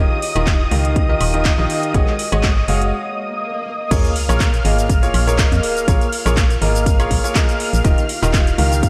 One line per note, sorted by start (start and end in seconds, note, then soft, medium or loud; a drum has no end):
0.00 0.14 D#3 medium
0.00 0.14 F4 medium
0.00 0.14 G4 medium
0.00 0.14 A#4 medium
0.00 0.14 D#5 loud
0.00 3.92 D#5 medium
0.00 3.92 D#6 medium
0.22 open hi-hat loud
0.35 0.67 D#1 loud
0.35 0.51 D#3 medium
0.35 0.51 F4 medium
0.35 0.51 G4 medium
0.35 0.51 A#4 medium
0.35 0.51 D#5 loud
0.35 closed hi-hat medium
0.35 high woodblock medium
0.47 kick loud
0.47 clap loud
0.47 closed hi-hat medium
0.71 1.16 C#2 medium
0.71 1.06 D#3 medium
0.71 1.06 F4 medium
0.71 1.06 G4 medium
0.71 1.06 A#4 medium
0.71 1.06 F5 medium
0.71 open hi-hat medium
0.85 closed hi-hat medium
0.96 kick loud
0.96 closed hi-hat medium
1.09 1.31 D#3 medium
1.09 1.31 F4 medium
1.09 1.31 G4 medium
1.09 1.31 A#4 medium
1.09 1.31 D#5 loud
1.21 1.53 D#1 medium
1.21 open hi-hat loud
1.21 high woodblock medium
1.34 1.49 D#3 medium
1.34 1.49 F4 medium
1.34 1.49 G4 medium
1.34 1.49 A#4 medium
1.34 1.49 D#5 medium
1.34 closed hi-hat medium
1.45 kick loud
1.45 clap loud
1.45 closed hi-hat medium
1.58 1.67 A#1 loud
1.58 1.92 D#3 medium
1.58 1.92 F4 medium
1.58 1.92 G4 medium
1.58 1.92 A#4 medium
1.58 1.92 D#5 loud
1.70 open hi-hat medium
1.83 closed hi-hat medium
1.94 2.04 G#1 loud
1.94 2.11 G#3 medium
1.94 2.11 F#4 medium
1.94 2.11 G#4 medium
1.94 2.11 C#5 medium
1.94 2.11 D#5 loud
1.94 kick loud
1.94 closed hi-hat medium
2.07 clap soft
2.19 open hi-hat loud
2.32 2.63 G#1 loud
2.32 2.48 G#3 medium
2.32 2.48 F#4 medium
2.32 2.48 G#4 medium
2.32 2.48 C#5 medium
2.32 2.48 D#5 loud
2.32 closed hi-hat medium
2.32 high woodblock medium
2.43 kick loud
2.43 clap loud
2.43 closed hi-hat medium
2.68 2.93 F#1 medium
2.68 2.93 G#3 medium
2.68 2.93 F#4 medium
2.68 2.93 G#4 medium
2.68 2.93 C#5 medium
2.68 2.93 F5 medium
2.68 open hi-hat medium
2.82 closed hi-hat medium
2.93 swell medium
3.91 4.01 A#1 loud
3.91 4.08 A#3 medium
3.91 4.08 F4 medium
3.91 4.08 G#4 medium
3.91 4.08 A#4 medium
3.91 4.08 C#5 loud
3.91 8.89 F5 medium
3.91 8.89 F6 medium
3.91 kick loud
3.91 closed hi-hat loud
3.91 crash loud
3.91 sub drop medium
3.91 cabasa medium
4.05 closed hi-hat soft
4.05 cabasa soft
4.16 open hi-hat loud
4.29 4.60 A#1 loud
4.29 4.45 A#3 medium
4.29 4.45 F4 medium
4.29 4.45 G#4 medium
4.29 4.45 A#4 medium
4.29 4.45 C#5 loud
4.29 closed hi-hat soft
4.29 cabasa medium
4.29 high woodblock medium
4.40 kick loud
4.40 clap loud
4.40 closed hi-hat loud
4.40 cabasa medium
4.54 closed hi-hat soft
4.54 cabasa soft
4.65 5.09 G#1 medium
4.65 5.00 A#3 medium
4.65 5.00 F4 medium
4.65 5.00 G#4 medium
4.65 5.00 A#4 medium
4.65 5.00 D#5 medium
4.65 open hi-hat loud
4.78 closed hi-hat soft
4.78 cabasa medium
4.89 kick loud
4.89 closed hi-hat medium
4.89 cabasa medium
5.03 5.24 A#3 medium
5.03 5.24 F4 medium
5.03 5.24 G#4 medium
5.03 5.24 A#4 medium
5.03 5.24 C#5 loud
5.03 closed hi-hat soft
5.03 cabasa soft
5.14 5.46 A#1 medium
5.14 open hi-hat loud
5.14 high woodblock medium
5.27 5.36 A#3 medium
5.27 5.36 F4 medium
5.27 5.36 G#4 medium
5.27 5.36 A#4 medium
5.27 5.36 C#5 loud
5.27 closed hi-hat soft
5.27 cabasa medium
5.38 5.85 A#3 medium
5.38 5.85 F4 medium
5.38 5.85 G#4 medium
5.38 5.85 A#4 medium
5.38 5.85 D#5 medium
5.38 kick loud
5.38 clap loud
5.38 closed hi-hat loud
5.38 cabasa medium
5.52 5.60 F2 loud
5.52 closed hi-hat soft
5.52 cabasa soft
5.63 open hi-hat medium
5.77 closed hi-hat soft
5.77 cabasa medium
5.88 5.98 A#1 loud
5.88 6.05 A#3 medium
5.88 6.05 F4 medium
5.88 6.05 G#4 medium
5.88 6.05 A#4 medium
5.88 6.05 C#5 loud
5.88 kick loud
5.88 closed hi-hat medium
5.88 cabasa medium
6.01 closed hi-hat soft
6.01 cabasa soft
6.13 open hi-hat loud
6.26 6.57 A#1 loud
6.26 6.41 A#3 medium
6.26 6.41 F4 medium
6.26 6.41 G#4 medium
6.26 6.41 A#4 medium
6.26 6.41 C#5 loud
6.26 closed hi-hat soft
6.26 cabasa medium
6.26 high woodblock medium
6.37 kick loud
6.37 clap loud
6.37 closed hi-hat medium
6.37 cabasa medium
6.50 closed hi-hat soft
6.50 cabasa soft
6.62 7.06 G#1 medium
6.62 6.96 A#3 medium
6.62 6.96 F4 medium
6.62 6.96 G#4 medium
6.62 6.96 A#4 medium
6.62 6.96 D#5 medium
6.62 open hi-hat loud
6.75 closed hi-hat soft
6.75 cabasa medium
6.86 kick loud
6.86 closed hi-hat loud
6.86 cabasa medium
7.00 7.21 A#3 medium
7.00 7.21 F4 medium
7.00 7.21 G#4 medium
7.00 7.21 A#4 medium
7.00 7.21 C#5 loud
7.00 closed hi-hat soft
7.00 cabasa soft
7.00 high woodblock medium
7.11 7.21 A#1 medium
7.11 kick medium
7.11 open hi-hat loud
7.24 7.33 A#3 medium
7.24 7.33 F4 medium
7.24 7.33 G#4 medium
7.24 7.33 A#4 medium
7.24 7.33 C#5 loud
7.24 closed hi-hat soft
7.24 cabasa medium
7.35 7.82 A#3 medium
7.35 7.82 F4 medium
7.35 7.82 G#4 medium
7.35 7.82 A#4 medium
7.35 7.82 D#5 medium
7.35 kick loud
7.35 clap loud
7.35 closed hi-hat loud
7.35 cabasa medium
7.49 closed hi-hat soft
7.49 cabasa soft
7.60 open hi-hat medium
7.73 7.82 A#1 medium
7.73 closed hi-hat soft
7.73 cabasa medium
7.84 7.94 D#1 loud
7.84 8.01 D#3 medium
7.84 8.01 F4 medium
7.84 8.01 G4 medium
7.84 8.01 A#4 medium
7.84 8.01 D#5 loud
7.84 kick loud
7.84 closed hi-hat medium
7.84 cabasa medium
7.98 closed hi-hat soft
7.98 cabasa soft
8.09 open hi-hat loud
8.22 8.54 D#1 loud
8.22 8.38 D#3 medium
8.22 8.38 F4 medium
8.22 8.38 G4 medium
8.22 8.38 A#4 medium
8.22 8.38 D#5 loud
8.22 closed hi-hat soft
8.22 cabasa medium
8.22 high woodblock medium
8.33 kick loud
8.33 clap loud
8.33 closed hi-hat medium
8.33 cabasa medium
8.47 closed hi-hat soft
8.47 cabasa soft
8.58 8.89 C#2 medium
8.58 8.89 D#3 medium
8.58 8.89 F4 medium
8.58 8.89 G4 medium
8.58 8.89 A#4 medium
8.58 8.89 F5 medium
8.58 open hi-hat loud
8.72 closed hi-hat soft
8.72 cabasa medium
8.83 kick loud
8.83 closed hi-hat medium
8.83 cabasa medium